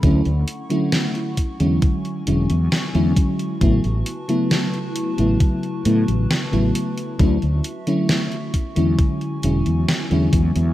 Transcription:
0.03 fretless electric bass D2, fm electric piano D3 F#3 A3 C#4 E4, ambient pad E4 F#5 C#6, kick, closed hi-hat
0.25 fretless electric bass D2, closed hi-hat
0.48 closed hi-hat
0.70 fm electric piano D3 F#3 A3 C#4 E4, closed hi-hat
0.92 snare, closed hi-hat
1.15 closed hi-hat
1.37 ambient pad F#4 G#5, kick, closed hi-hat
1.60 fretless electric bass E2, fm electric piano D3 F#3 G#3 C#4 E4, closed hi-hat
1.82 kick, closed hi-hat
2.05 closed hi-hat
2.27 fretless electric bass E1, fm electric piano D3 F#3 G#3 C#4 E4, closed hi-hat
2.50 fretless electric bass E2, closed hi-hat
2.72 snare, closed hi-hat
2.94 fretless electric bass E2, fm electric piano D3 F#3 G#3 C#4 E4, closed hi-hat
3.16 kick, closed hi-hat
3.39 closed hi-hat
3.61 fretless electric bass A1, fm electric piano C#3 F#3 A3 B3 E4, ambient pad B4 A5, kick, closed hi-hat
3.84 fretless electric bass A1, closed hi-hat
4.06 closed hi-hat
4.28 fm electric piano C#3 F#3 A3 B3 E4, closed hi-hat
4.51 snare, closed hi-hat
4.74 closed hi-hat
4.96 closed hi-hat
5.18 fretless electric bass A1, fm electric piano C#3 F#3 A3 B3 E4, closed hi-hat
5.40 kick, closed hi-hat
5.63 closed hi-hat
5.85 fretless electric bass A2, fm electric piano C#3 F#3 A3 B3 E4, closed hi-hat
6.08 fretless electric bass A1, closed hi-hat
6.31 snare, closed hi-hat
6.52 fretless electric bass A1, fm electric piano C#3 F#3 A3 B3 E4, closed hi-hat
6.75 closed hi-hat
6.98 closed hi-hat
7.19 fretless electric bass D2, fm electric piano D3 F#3 A3 C#4 E4, ambient pad F#4 E5, kick, closed hi-hat
7.42 fretless electric bass D2, closed hi-hat
7.64 closed hi-hat
7.87 fm electric piano D3 F#3 A3 C#4 E4, closed hi-hat
8.09 snare, closed hi-hat
8.32 closed hi-hat
8.54 ambient pad G#5 C#6, kick, closed hi-hat
8.75 fretless electric bass E2, fm electric piano D3 F#3 G#3 C#4 E4, closed hi-hat
8.99 kick, closed hi-hat
9.21 closed hi-hat
9.43 fretless electric bass E1, fm electric piano D3 F#3 G#3 C#4 E4, closed hi-hat
9.66 fretless electric bass E2, closed hi-hat
9.89 snare, closed hi-hat
10.11 fretless electric bass E2, fm electric piano D3 F#3 G#3 C#4 E4, closed hi-hat
10.33 fretless electric bass E2, kick, closed hi-hat
10.56 fretless electric bass E2, closed hi-hat

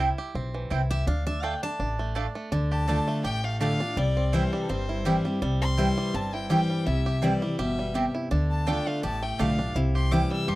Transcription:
Already playing: five-string banjo G3 C4, steel-string acoustic guitar E5
0.00 five-string banjo E4
0.18 five-string banjo G4
0.35 upright bass B1, five-string banjo C4
0.54 five-string banjo E3
0.70 upright bass C2, mandolin C4 E4 C5 G5, five-string banjo E4
0.90 five-string banjo G4, steel-string acoustic guitar E5
1.07 upright bass D2, five-string banjo D4, steel-string acoustic guitar F5
1.27 five-string banjo D4, steel-string acoustic guitar E5
1.43 mandolin A3 F4 D5 A5, five-string banjo A3, steel-string acoustic guitar G5
1.63 five-string banjo D4, steel-string acoustic guitar A5
1.79 upright bass A1, five-string banjo D4
1.99 five-string banjo A3
2.15 mandolin A3 F4 D5 A5, five-string banjo D4
2.35 five-string banjo A3
2.52 upright bass D2, steel-string acoustic guitar D3, five-string banjo D4
2.72 five-string banjo G4, fiddle A5
2.88 steel-string acoustic guitar D3 A3 D4 F4, mandolin A3 F4 D5 A5, five-string banjo D4
3.08 five-string banjo A3
3.24 upright bass A1, steel-string acoustic guitar A2, five-string banjo G4, fiddle G5
3.44 five-string banjo A3, fiddle F5
3.60 steel-string acoustic guitar D3 A3 D4 F4, mandolin A3 F4 D5 A5, five-string banjo G4, fiddle F5
3.80 five-string banjo D4, steel-string acoustic guitar D4 F4
3.97 upright bass C2, steel-string acoustic guitar C3, five-string banjo G3, fiddle D5
4.17 five-string banjo C4
4.33 steel-string acoustic guitar E3 G3 C4 E4, mandolin C4 E4 C5 G5, five-string banjo E4, fiddle C5
4.53 five-string banjo G3
4.62 fiddle A4
4.69 upright bass G1, steel-string acoustic guitar G2, five-string banjo C4, fiddle C5
4.89 five-string banjo E4
5.05 steel-string acoustic guitar E3 G3 C4 E4, mandolin C4 E4 C5 G5, five-string banjo G4
5.25 five-string banjo G3, steel-string acoustic guitar C4 E4
5.42 upright bass C2, steel-string acoustic guitar C3, five-string banjo G3
5.61 five-string banjo C4, fiddle C6
5.77 steel-string acoustic guitar E3 G3 C4 E4, mandolin C4 E4 C5 G5, five-string banjo E4
5.98 five-string banjo G3
6.14 upright bass G1, steel-string acoustic guitar G2, five-string banjo C4, fiddle A5
6.34 five-string banjo E4, fiddle G5
6.49 steel-string acoustic guitar E3 G3 C4 E4, mandolin C4 E4 C5 G5, five-string banjo G4, fiddle G5
6.70 five-string banjo G3
6.86 upright bass C2, steel-string acoustic guitar C3, five-string banjo E4, fiddle E5
7.06 five-string banjo G4
7.22 steel-string acoustic guitar E3 G3 C4 E4, mandolin C4 E4 C5 G5, five-string banjo E4, fiddle D5
7.42 five-string banjo G3, steel-string acoustic guitar C4 E4
7.59 upright bass G1, steel-string acoustic guitar B2, five-string banjo G4, fiddle E5
7.79 five-string banjo G3
7.94 steel-string acoustic guitar C3, mandolin C4 E4 C5 G5, five-string banjo G4
8.15 five-string banjo E4
8.31 upright bass D2, steel-string acoustic guitar D3, five-string banjo D4
8.50 fiddle A5
8.66 steel-string acoustic guitar D3 A3 D4 F4, mandolin A3 F4 D5 A5, five-string banjo D4, fiddle G5
8.87 five-string banjo A3, fiddle F5
9.03 upright bass A1, steel-string acoustic guitar A2, five-string banjo G4, fiddle A5
9.22 five-string banjo A3, fiddle G5
9.39 upright bass B1, steel-string acoustic guitar D3 A3 D4 F4, mandolin A3 F4 D5 A5, five-string banjo G4, fiddle F5
9.59 five-string banjo D4, steel-string acoustic guitar D4 F4
9.75 upright bass C2, steel-string acoustic guitar C3, five-string banjo E4
9.95 five-string banjo G4, fiddle C6
10.11 steel-string acoustic guitar E3 G3 C4 E4, mandolin C4 E4 C5 G5, five-string banjo E4, fiddle D6
10.31 five-string banjo G3, fiddle E6
10.48 upright bass G1, steel-string acoustic guitar G2, five-string banjo G4, fiddle C6

